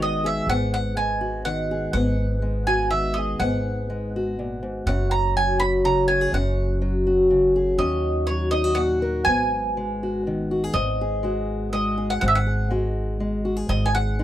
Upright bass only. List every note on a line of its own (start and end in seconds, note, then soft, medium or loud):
0.00 0.45 G#1 medium
0.47 1.90 G#1 medium
1.93 3.37 G#1 medium
3.40 4.83 G#1 medium
4.86 6.30 F#1 medium
6.32 7.76 F#1 medium
7.78 9.23 D#2 medium
9.26 10.71 G#1 medium
10.74 12.18 G#1 medium
12.22 13.66 G#1 medium
13.69 14.24 G#1 medium